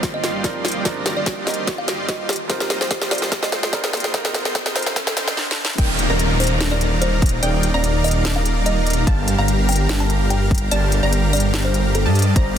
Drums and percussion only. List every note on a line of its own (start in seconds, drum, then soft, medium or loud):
0.03 kick medium
0.03 snare medium
0.03 closed hi-hat medium
0.24 snare medium
0.24 closed hi-hat medium
0.44 kick loud
0.44 snare medium
0.44 closed hi-hat medium
0.65 snare medium
0.65 closed hi-hat soft
0.68 closed hi-hat medium
0.72 closed hi-hat medium
0.85 kick medium
0.85 snare medium
0.85 closed hi-hat medium
1.06 snare medium
1.06 closed hi-hat medium
1.26 kick loud
1.26 snare medium
1.26 closed hi-hat medium
1.47 snare medium
1.47 closed hi-hat medium
1.47 open hi-hat medium
1.54 closed hi-hat medium
1.67 kick loud
1.67 snare medium
1.67 closed hi-hat medium
1.88 snare medium
1.88 closed hi-hat medium
2.08 kick medium
2.08 snare medium
2.08 closed hi-hat medium
2.29 snare medium
2.29 closed hi-hat soft
2.33 closed hi-hat medium
2.36 closed hi-hat medium
2.50 kick medium
2.50 snare medium
2.50 closed hi-hat medium
2.60 snare medium
2.70 snare medium
2.70 closed hi-hat medium
2.81 snare medium
2.91 kick loud
2.91 snare medium
2.91 closed hi-hat medium
3.02 snare medium
3.11 snare medium
3.11 closed hi-hat medium
3.11 open hi-hat medium
3.18 closed hi-hat medium
3.22 snare medium
3.32 kick loud
3.32 snare loud
3.32 closed hi-hat medium
3.43 snare medium
3.52 snare medium
3.52 closed hi-hat medium
3.63 snare medium
3.73 kick loud
3.73 snare loud
3.73 closed hi-hat medium
3.84 snare medium
3.93 snare loud
3.93 closed hi-hat soft
3.97 closed hi-hat medium
4.00 closed hi-hat medium
4.04 snare medium
4.14 kick medium
4.14 snare loud
4.14 closed hi-hat medium
4.25 snare medium
4.34 snare loud
4.34 closed hi-hat medium
4.45 snare medium
4.55 kick loud
4.55 snare loud
4.55 closed hi-hat medium
4.66 snare medium
4.76 snare loud
4.76 closed hi-hat medium
4.76 open hi-hat medium
4.82 closed hi-hat medium
4.86 snare medium
4.96 kick loud
4.96 snare loud
4.96 closed hi-hat medium
5.07 snare loud
5.17 snare loud
5.17 closed hi-hat medium
5.28 snare medium
5.37 snare medium
5.51 snare medium
5.65 snare medium
5.78 kick loud
5.78 closed hi-hat medium
5.78 crash loud
5.99 closed hi-hat medium
6.19 closed hi-hat medium
6.40 closed hi-hat medium
6.40 open hi-hat medium
6.47 closed hi-hat medium
6.61 snare loud
6.61 closed hi-hat medium
6.81 closed hi-hat medium
7.02 closed hi-hat medium
7.22 kick loud
7.22 closed hi-hat medium
7.26 closed hi-hat medium
7.29 closed hi-hat medium
7.43 closed hi-hat medium
7.63 closed hi-hat medium
7.84 closed hi-hat medium
8.04 closed hi-hat medium
8.04 open hi-hat medium
8.11 closed hi-hat medium
8.25 snare loud
8.25 closed hi-hat medium
8.45 closed hi-hat medium
8.66 closed hi-hat medium
8.87 closed hi-hat medium
8.90 closed hi-hat medium
8.93 closed hi-hat medium
9.07 kick loud
9.07 closed hi-hat medium
9.28 closed hi-hat medium
9.48 closed hi-hat medium
9.69 closed hi-hat medium
9.69 open hi-hat medium
9.76 closed hi-hat medium
9.89 snare loud
9.89 closed hi-hat medium
10.10 closed hi-hat medium
10.30 closed hi-hat medium
10.51 kick loud
10.51 closed hi-hat soft
10.55 closed hi-hat medium
10.58 closed hi-hat medium
10.71 closed hi-hat medium
10.92 closed hi-hat medium
11.13 closed hi-hat medium
11.33 closed hi-hat medium
11.33 open hi-hat medium
11.40 closed hi-hat medium
11.54 snare loud
11.54 closed hi-hat medium
11.74 closed hi-hat medium
11.95 closed hi-hat medium
12.15 closed hi-hat soft
12.19 closed hi-hat medium
12.22 closed hi-hat medium
12.36 kick loud
12.36 closed hi-hat medium